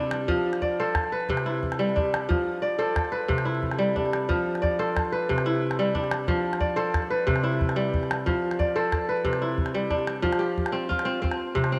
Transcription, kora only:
0.00 0.33 C3 medium
0.00 0.33 G3 medium
0.00 1.62 D4 medium
0.00 0.34 E4 medium
0.00 0.35 B4 medium
0.28 1.34 F3 medium
0.62 1.73 D5 medium
0.79 2.11 A4 medium
0.79 1.98 C5 medium
1.12 2.35 B4 medium
1.29 2.34 C3 medium
1.46 2.35 E4 medium
1.79 2.34 G3 medium
1.96 3.64 D4 medium
2.29 3.35 F3 medium
2.62 3.73 D5 medium
2.79 4.10 A4 medium
2.79 3.98 C5 medium
3.12 4.35 B4 medium
3.29 4.34 C3 medium
3.45 4.35 E4 medium
3.79 4.34 G3 medium
3.96 5.64 D4 medium
4.29 5.34 F3 medium
4.62 5.73 D5 medium
4.79 6.11 A4 medium
4.79 5.98 C5 medium
5.12 6.35 B4 medium
5.29 6.33 C3 medium
5.46 6.34 E4 medium
5.79 6.33 G3 medium
5.95 7.63 D4 medium
6.28 7.33 F3 medium
6.60 7.71 D5 medium
6.76 8.09 A4 medium
6.76 7.95 C5 medium
7.10 8.33 B4 medium
7.27 8.32 C3 medium
7.43 8.32 E4 medium
7.76 8.32 G3 medium
8.26 9.31 F3 medium
8.59 9.70 D5 medium
8.76 10.07 A4 medium
8.76 9.95 C5 medium
9.09 10.32 B4 medium
9.25 10.30 C3 medium
9.42 10.28 E4 medium
9.74 10.30 G3 medium
9.90 11.58 D4 medium
10.22 11.29 F3 medium
10.39 11.79 G4 medium
10.72 11.05 C4 medium
10.89 11.79 F4 medium
11.05 11.21 C4 medium
11.22 11.72 C4 medium
11.55 11.79 C3 medium
11.72 11.79 C4 medium

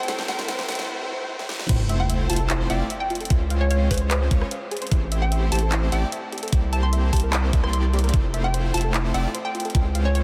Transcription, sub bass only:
1.69 2.28 F1 loud
2.30 2.68 F1 loud
2.70 2.82 F1 loud
3.30 3.89 C#2 loud
3.91 4.29 C#2 loud
4.31 4.43 C#2 loud
4.92 5.50 A1 medium
5.52 5.90 A1 loud
5.92 6.04 A1 medium
6.53 7.11 C2 loud
7.13 7.51 C2 loud
7.53 7.61 C2 loud
7.63 8.12 C2 loud
8.14 8.72 F1 medium
8.74 9.12 F1 loud
9.14 9.27 F1 loud
9.75 10.23 C#2 medium

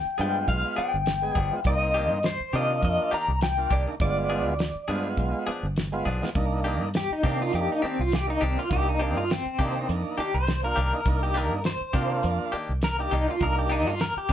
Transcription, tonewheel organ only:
0.19 0.81 G#3 medium
0.19 0.81 B3 medium
0.19 0.82 F4 medium
1.22 1.39 G#3 medium
1.22 1.39 B3 medium
1.22 1.40 G#4 medium
1.51 1.60 G#3 medium
1.51 1.60 B3 medium
1.51 1.61 F4 medium
1.65 2.19 A#3 medium
1.65 2.19 C4 medium
1.65 2.19 D#4 medium
2.53 3.16 A#3 medium
2.53 3.16 D4 medium
2.53 3.17 F4 medium
3.57 3.74 A#3 medium
3.57 3.75 D4 medium
3.57 3.75 F4 medium
3.86 3.95 A#3 medium
3.86 3.95 D4 medium
3.86 3.96 D#4 medium
4.00 4.54 G#3 medium
4.00 4.54 B3 medium
4.00 4.55 F4 medium
4.88 5.51 G#3 medium
4.88 5.51 B3 medium
4.88 5.51 F4 loud
5.92 6.09 G#3 medium
5.92 6.10 B3 medium
5.92 6.10 F4 medium
6.21 6.30 G#3 medium
6.21 6.30 B3 medium
6.21 6.31 F4 medium
6.35 6.89 A#3 loud
6.35 6.89 D4 medium
6.35 6.89 D#4 loud
7.23 7.85 A#3 medium
7.23 7.86 D4 medium
7.23 7.86 D#4 medium
8.27 8.44 A#3 medium
8.27 8.44 D4 medium
8.27 8.45 D#4 medium
8.56 8.65 A#3 medium
8.56 8.65 D4 medium
8.56 8.66 F4 medium
8.71 9.24 A#3 medium
8.71 9.25 D4 medium
8.71 9.25 D#4 medium
9.59 10.22 A#3 medium
9.59 10.22 D4 medium
9.59 10.22 D#4 medium
10.63 10.80 A#3 medium
10.63 10.80 D4 medium
10.63 10.80 F4 medium
10.93 11.01 A#3 medium
10.93 11.01 D4 medium
10.93 11.01 D#4 medium
11.06 11.60 A#3 medium
11.06 11.60 D4 medium
11.06 11.60 D#4 medium
11.93 12.56 A#3 medium
11.93 12.57 D4 medium
11.93 12.57 F4 medium
12.98 13.15 A#3 medium
12.98 13.15 D4 medium
12.98 13.16 D#4 medium
13.27 13.36 A#3 medium
13.27 13.36 D4 medium
13.27 13.36 F4 medium
13.40 13.95 A#3 medium
13.40 13.95 D4 medium
13.40 13.95 D#4 medium
14.29 14.33 A#3 medium

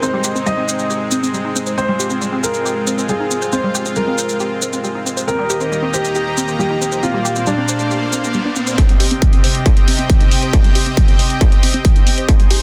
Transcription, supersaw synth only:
0.00 5.24 G#3 medium
0.00 5.24 C4 medium
0.00 1.74 D#4 medium
1.78 5.25 F4 medium
5.28 7.01 D#3 medium
5.28 8.75 A#3 medium
5.28 7.01 G4 medium
5.28 7.01 D#5 medium
5.28 7.01 A#5 medium
7.03 8.76 A#2 medium
7.03 8.77 C5 medium
7.03 8.77 D5 medium
7.03 8.76 F5 medium
8.78 12.25 C3 medium
8.78 12.25 C4 medium
8.78 12.25 G4 medium
8.78 12.25 D#5 medium
8.78 12.25 G5 medium
12.28 12.62 D#4 medium
12.28 12.62 G#4 medium
12.28 12.62 C5 medium

